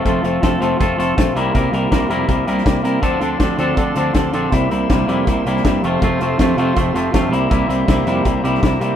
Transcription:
<<
  \new Staff \with { instrumentName = "Tonewheel organ" } { \time 4/4 \key c \mixolydian \tempo 4 = 161 << { r1 | r1 | c'''1~ | c'''1~ |
c'''2.~ c'''8 bes''8~ | bes''1 | } \\ { r1 | r1 | <a' d'' f''>1 | <bes' e'' g''>2.~ <bes' e'' g''>8 <a' c'' f''>8~ |
<a' c'' f''>2.~ <a' c'' f''>8 <g' c'' e''>8~ | <g' c'' e''>1 | } >> }
  \new Staff \with { instrumentName = "Clean electric guitar" } { \time 4/4 \key c \mixolydian <f a c' f' a'>8 <f a c' f' a'>8 <f a c' f' a'>8 <f a c' f' a'>8 <f a c' f' a'>8 <f a c' f' a'>8 <f a c' f' a'>8 <c g bes e' bes'>8 | <c g bes e' bes'>8 <c g bes e' bes'>8 <c g bes e' bes'>8 <c g bes e' bes'>8 <c g bes e' bes'>8 <c g bes e' bes'>8 <c g bes e' bes'>8 <c g bes e' bes'>8 | <d f c' d' a'>8 <d f c' d' a'>8 <d f c' d' a'>8 <d f c' d' a'>8 <d f c' d' a'>8 <d f c' d' a'>8 <d f c' d' a'>8 <d f c' d' a'>8 | <c g bes e'>8 <c g bes e'>8 <c g bes e'>8 <c g bes e'>8 <c g bes e'>8 <c g bes e'>8 <c g bes e'>8 <f, c f a c' f'>8 |
<f, c f a c' f'>8 <f, c f a c' f'>8 <f, c f a c' f'>8 <f, c f a c' f'>8 <f, c f a c' f'>8 <f, c f a c' f'>8 <f, c f a c' f'>8 <c g bes e'>8 | <c g bes e'>8 <c g bes e'>8 <c g bes e'>8 <c g bes e'>8 <c g bes e'>8 <c g bes e'>8 <c g bes e'>8 <c g bes e'>8 | }
  \new Staff \with { instrumentName = "Picked electric bass" } { \clef bass \time 4/4 \key c \mixolydian f,,8 f,,8 f,,8 f,,8 f,,8 f,,8 bes,,8 c,8 | c,8 c,8 c,8 f,8 c,8 c,8 c,8 c8 | d,8 d,8 d,8 d,8 d,8 d,8 d,8 bes,,8 | c,8 c,8 c,8 f,8 c,8 c,8 g,8 f,,8 |
f,,8 f,,8 f,,8 f,,8 f,,8 f,,8 f,,8 c,8 | c,8 c,8 c,8 f,8 c,8 c,8 c,8 c8 | }
  \new DrumStaff \with { instrumentName = "Drums" } \drummode { \time 4/4 <hh bd>8 hh8 <hh bd sn>8 hh8 <hh bd>8 hh8 <hh bd sn>8 hh8 | <hh bd>8 hh8 <hh bd sn>8 hh8 <hh bd>8 hh16 sn16 <hh bd sn>8 hh8 | <hh bd>8 hh8 <hh bd sn>8 hh8 <hh bd>8 hh8 <hh bd sn>8 hh8 | <hh bd>8 hh8 <hh bd sn>8 hh8 <hh bd>8 hh16 sn16 <hh bd sn>8 hh8 |
<hh bd>8 hh8 <hh bd sn>8 hh8 <hh bd>8 hh8 <hh bd sn>8 hh8 | <hh bd>8 hh8 <hh bd sn>8 hh8 <hh bd>8 hh16 sn16 <hh bd sn>8 hh8 | }
>>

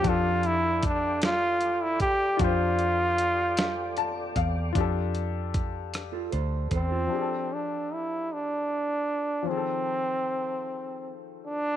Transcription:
<<
  \new Staff \with { instrumentName = "Tonewheel organ" } { \time 6/8 \key f \major \tempo 4. = 51 <a' d'' g'' d'''>2.~ | <a' d'' g'' d'''>2. | r2. | r2. |
r2. | }
  \new Staff \with { instrumentName = "Clean electric guitar" } { \time 6/8 \key f \major r2. | r2. | r4. r16 <f' a'>16 <a' c''>8 <a' c''>16 <f' a'>16~ | <f' a'>16 r2 r8. |
r2. | }
  \new Staff \with { instrumentName = "Grand piano" } { \time 6/8 \key f \major << { r2. | r2 a''8 f''8 | r2. | r2. |
r2. | } \\ { <f d' g' a'>2. | <d' f' g' c''>2. | <d' f' g' a'>2. | <f d' g' aes' a'>2. |
<ees f c' aes' a'>2. | } >> }
  \new Staff \with { instrumentName = "Trombone" } { \time 6/8 \key f \major f'8 e'8 d'8 f'8. e'16 g'8 | f'2~ f'8 r8 | r2 r8 c'8~ | c'8 d'8 e'8 d'4. |
c'2~ c'16 r16 d'8 | }
  \new Staff \with { instrumentName = "Fingered electric bass" } { \clef bass \time 6/8 \key f \major f,2. | f,2~ f,8 e,8 | f,2 d,8 e,8 | r2. |
r2. | }
  \new DrumStaff \with { instrumentName = "Drums" } \drummode { \time 6/8 <hh bd>8 hh8 <hh bd>8 <hh sn>8 hh8 <hh bd>8 | <hh bd>8 hh8 hh8 <hh sn>8 hh8 <hh bd>8 | <hh bd>8 hh8 <hh bd>8 <hh ss>8 hh8 <hh bd>8 | r4. r4. |
r4. r4. | }
>>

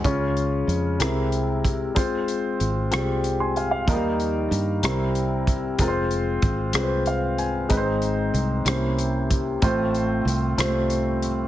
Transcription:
<<
  \new Staff \with { instrumentName = "Upright piano" } { \time 6/8 \key f \minor \tempo 4. = 63 << { r2. | r2 r16 <aes'' c'''>16 <f'' aes''>16 f''16~ | f''16 r2 r8. | r2 f''8 aes''8 |
r2. | r2. | } \\ { <aes des' f' des''>4 r8 <gis c' e' bes'>4 r8 | <aes c' f' c''>4 r8 <g aes c' f' g'>4 r8 | <f g bes ees' bes'>4 r8 <g c' e' bes'>4 r8 | <aes c' f' bes' c''>4 r8 <aes c' f' ces'' c''>4 r8 |
<aes c' ees' ces'' c''>4 r8 <bes des' e' c''>4 r8 | <a c' f' c''>4 r8 <g a c' f' c''>4 r8 | } >> }
  \new Staff \with { instrumentName = "Upright piano" } { \clef bass \time 6/8 \key f \minor des4. c4. | r2. | ees4. c4. | r2. |
aes,4. c4. | a,4. r4. | }
  \new Staff \with { instrumentName = "Fingered electric bass" } { \clef bass \time 6/8 \key f \minor des,4 f,8 c,4. | f,,4 aes,,8 c,4. | ees,4 g,8 c,4. | f,,4 aes,,8 c,4. |
aes,,4 c,8 c,4. | a,,4 c,8 c,4. | }
  \new DrumStaff \with { instrumentName = "Drums" } \drummode { \time 6/8 <hh bd>8 hh8 hh8 <hh ss>8 hh8 <hh bd>8 | <hh bd>8 hh8 hh8 <hh ss>8 hh8 hh8 | <hh bd>8 hh8 hh8 <hh ss>8 hh8 <hh bd>8 | <hh bd>8 hh8 <hh bd>8 <hh ss>8 hh8 hh8 |
<hh bd>8 hh8 hh8 <hh ss>8 hh8 <hh bd>8 | <hh bd>8 hh8 hh8 <hh ss>8 hh8 hh8 | }
>>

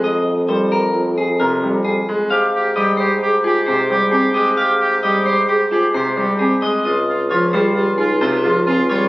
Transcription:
<<
  \new Staff \with { instrumentName = "Clean electric guitar" } { \time 5/4 \key aes \major \tempo 4 = 132 ees''8 r8 c''8 bes'8 r8 aes'8 bes'8 r8 aes'8 r8 | f''8 r8 ees''8 c''8 r8 aes'8 c''8 r8 aes'8 ees''8 | f''8 r8 ees''8 c''8 r8 aes'8 c''8 r8 aes'8 ees''8 | ees''8 r8 des''8 c''8 r8 aes'8 c''8 r8 aes'8 des''8 | }
  \new Staff \with { instrumentName = "Marimba" } { \time 5/4 \key aes \major r4 bes'8 r8 f'8 r8 bes'8 c'8 r4 | r4. c''8 aes'8 f'8 r8 c''8 c'8 r8 | r4. c''8 aes'8 f'8 r8 c''8 c'8 r8 | r4. aes'8 g'8 ees'8 r8 aes'8 c'8 r8 | }
  \new Staff \with { instrumentName = "Oboe" } { \time 5/4 \key aes \major r1 r4 | g'8 g'8 g'8 g'8 g'8 g'8 g'8 g'8 g'8 g'8 | g'8 g'8 g'8 g'8 g'8 g'8 g'8 g'8 g'8 r8 | f'8 f'8 f'8 f'8 f'8 f'8 f'8 f'8 f'8 f'8 | }
  \new Staff \with { instrumentName = "Grand piano" } { \clef bass \time 5/4 \key aes \major r4 g8 r4. c8 g8 r8 aes8 | r4 g8 r4. c8 g8 r8 aes8 | r4 g8 r4. c8 g8 r8 aes8 | r4 f8 g8 r4 c8 f8 r8 g8 | }
  \new Staff \with { instrumentName = "Bassoon" } { \clef bass \time 5/4 \key aes \major f,1~ f,4 | aes,1~ aes,4~ | aes,1~ aes,4 | des,1~ des,4 | }
>>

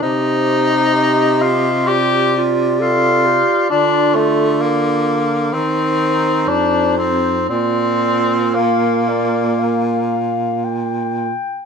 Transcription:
<<
  \new Staff \with { instrumentName = "Clarinet" } { \time 4/4 \key bes \major \tempo 4 = 64 c''4 ees''4 d''2~ | d''4. r8 c''4 c''4 | d''4 f''8 d''8 f''4 g''4 | }
  \new Staff \with { instrumentName = "Clarinet" } { \time 4/4 \key bes \major g'2 f'8 f'8 a'8 g'8 | f'4. r8 ees'2 | f'2.~ f'8 r8 | }
  \new Staff \with { instrumentName = "Tenor saxophone" } { \time 4/4 \key bes \major ees'4. f'8 g'8 r8 f'4 | d'8 a8 bes4 c'4 d'8 c'8 | c'4 bes2 r4 | }
  \new Staff \with { instrumentName = "Baritone saxophone" } { \clef bass \time 4/4 \key bes \major c2.~ c8 r8 | d2 ees4 f,4 | bes,2.~ bes,8 r8 | }
>>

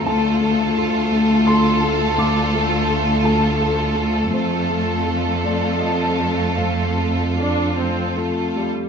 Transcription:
<<
  \new Staff \with { instrumentName = "Felt piano" } { \time 3/4 \key f \mixolydian \tempo 4 = 83 << { a''2 c'''4 | d'''4. a''4 r8 | c''4. d''8 ees''4 | f''2~ f''8 r8 | } \\ { d,8 <a a'>8 <f' a'>8 <a a'>8 <f' a'>8 <a a'>8 | d,8 <a a'>8 <f' a'>8 <a a'>8 <f' a'>8 <a a'>8 | f,8 <a a'>8 <f' a'>8 <a a'>8 <f' a'>8 <a a'>8 | f,8 <a a'>8 <f' a'>8 <a a'>8 <f' a'>8 <a a'>8 | } >> }
  \new Staff \with { instrumentName = "Violin section" } { \time 3/4 \key f \mixolydian a'2.~ | a'2. | a'2.~ | a'2~ a'8 r8 | }
  \new Staff \with { instrumentName = "Violin section" } { \time 3/4 \key f \mixolydian f'2.~ | f'2. | f'2.~ | f'2~ f'8 r8 | }
  \new Staff \with { instrumentName = "Viola section" } { \time 3/4 \key f \mixolydian a2.~ | a2. | a2.~ | a4 d'8 c'8 a8 g8 | }
  \new Staff \with { instrumentName = "Cello section" } { \clef bass \time 3/4 \key f \mixolydian d,2.~ | d,2. | f,2.~ | f,2~ f,8 r8 | }
>>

